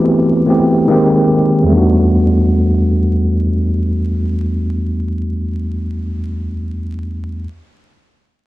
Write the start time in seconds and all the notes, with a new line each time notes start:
Already playing: E3 A3 B3 C4 F#4 G4
0.47 E3 A3 B3 C4 G4
0.88 D#3 G#3 A#3 C4 G4
1.63 E2 G3
1.69 A3 B3
1.74 D4 F#4